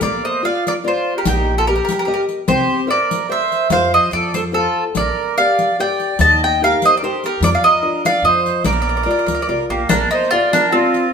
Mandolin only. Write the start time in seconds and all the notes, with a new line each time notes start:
0.03 D5
0.25 D#5
0.45 F5
0.68 D5
0.88 C5
1.18 A#4
1.27 G4
1.58 A4
1.67 A#4
1.75 A#4
1.85 A#4
1.92 A#4
1.99 A#4
2.05 A#4
2.14 A#4
2.48 C5
2.90 D5
3.32 E5
3.72 F5
3.94 D#5
4.13 D5
4.34 C5
4.54 A4
4.97 D5
5.38 F5
5.80 G5
6.21 A5
6.44 G5
6.64 F5
6.85 D#5
6.97 D5
7.04 C5
7.26 A#4
7.44 D5
7.55 F5
7.64 D#5
8.06 F5
8.25 D#5
8.65 D5
8.73 D5
8.82 D5
8.89 D5
8.97 D5
9.03 D5
9.11 D5
9.19 D5
9.26 D5
9.35 D5
9.42 D5
9.49 D5
9.70 A#3
9.89 D4
10.11 D#4
10.31 F4
10.53 D4
10.72 C4